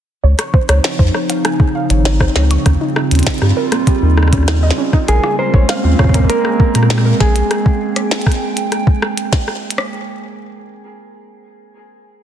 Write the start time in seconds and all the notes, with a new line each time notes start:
0.23 C#2 C#3 F3 C4 D#4 C#5
0.39 C#6, cross-stick, closed hi-hat
0.54 C5, kick
0.69 C#2 C#5, cross-stick, closed hi-hat
0.84 C#5, snare, closed hi-hat
0.99 F2 C5, kick
1.14 C#5, cross-stick
1.30 F5, closed hi-hat
1.45 G#5, cross-stick, closed hi-hat
1.60 G#4, kick
1.75 F5
1.90 G#1 C#5, closed hi-hat
2.05 C#5, snare, closed hi-hat
2.20 C5, kick, cross-stick
2.36 C#2 C#5, snare
2.51 C#6, closed hi-hat
2.66 D#2 G3 C#4 F4, kick, cross-stick, closed hi-hat
2.81 D#4
2.96 D#4, cross-stick
3.11 D#2 C#4, closed hi-hat
3.15 closed hi-hat
3.19 closed hi-hat
3.23 D#4, kick, snare, closed hi-hat
3.27 closed hi-hat
3.30 closed hi-hat
3.34 closed hi-hat
3.38 G2 G4, cross-stick, closed hi-hat
3.57 A#4
3.72 A#3, cross-stick, closed hi-hat
3.87 G4, kick, closed hi-hat
4.02 D#2 D#4
4.17 D#4, cross-stick
4.23 cross-stick
4.28 cross-stick
4.33 C#4, kick, cross-stick, closed hi-hat
4.38 cross-stick
4.43 cross-stick
4.48 D#4, cross-stick, snare, closed hi-hat
4.63 D#5
4.71 snare
4.78 C#4
4.93 D#4, kick, cross-stick
5.08 A#1 G#3 A#3 C4 C#4 G#4 A#4, closed hi-hat
5.24 G#4, cross-stick
5.39 A#4 C5
5.54 A#1 C#5, kick
5.69 F5, cross-stick, snare, closed hi-hat
5.84 D#2 F4
5.99 C#5, kick, cross-stick
6.04 kick
6.09 kick
6.14 A#4, kick, closed hi-hat
6.19 kick
6.24 kick
6.30 A#4, closed hi-hat
6.45 G#4, cross-stick
6.60 A#4, kick
6.75 A#2 A#5, cross-stick, closed hi-hat
6.83 cross-stick
6.90 G#4, cross-stick, snare, closed hi-hat
6.98 cross-stick
7.05 A#4
7.20 A#1 G#4 A#4, kick, snare
7.36 G#4, closed hi-hat
7.51 G5, cross-stick, closed hi-hat
7.66 kick
7.96 cross-stick, closed hi-hat
8.11 snare, closed hi-hat
8.21 closed hi-hat
8.26 kick, cross-stick
8.32 closed hi-hat
8.57 closed hi-hat
8.72 cross-stick, closed hi-hat
8.87 kick
9.02 cross-stick
9.18 closed hi-hat
9.33 kick, snare, closed hi-hat
9.48 cross-stick
9.71 closed hi-hat
9.78 cross-stick